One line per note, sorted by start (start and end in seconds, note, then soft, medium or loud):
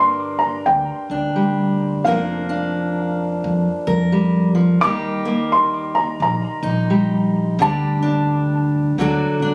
0.00 0.63 G1 medium
0.00 2.06 G2 medium
0.00 1.35 G3 medium
0.00 2.06 A#3 soft
0.00 1.10 D4 soft
0.00 2.08 A#4 medium
0.00 0.37 C6 medium
0.39 0.67 A#5 medium
0.66 0.87 D2 medium
0.66 2.09 G5 medium
1.10 2.02 D2 medium
1.10 2.06 D4 soft
1.36 2.02 G3 medium
2.04 3.40 F1 medium
2.04 4.12 F3 medium
2.04 4.82 A#3 medium
2.04 2.48 D4 soft
2.04 3.86 A#4 medium
2.04 3.40 F5 medium
2.49 4.83 D4 medium
3.44 3.64 F2 medium
3.87 4.79 F2 medium
3.87 4.80 A#4 medium
4.12 4.54 G3 medium
4.55 4.82 F3 medium
4.81 6.17 D#2 medium
4.81 7.56 D#3 medium
4.81 6.89 G3 medium
4.81 5.24 A#3 medium
4.81 6.62 D#4 medium
4.81 7.61 G4 medium
4.81 5.53 D6 medium
5.25 7.60 A#3 medium
5.52 5.96 C6 medium
5.95 6.20 A#5 medium
6.20 6.41 A#1 medium
6.20 7.65 A#5 medium
6.63 7.55 A#1 medium
6.63 7.56 D#4 medium
6.90 7.56 G3 soft
7.59 8.94 D2 medium
7.59 8.95 D3 medium
7.59 8.96 G3 soft
7.59 8.02 D4 medium
7.59 9.00 G4 medium
7.59 8.96 A5 medium
8.03 8.99 D4 medium
8.98 9.19 D2 medium
8.98 9.54 D3 medium
8.98 9.54 F#3 soft
8.98 9.41 D4 medium
8.98 9.54 F#4 medium
8.98 9.54 A4 medium
9.40 9.54 A1 medium
9.40 9.54 D4 medium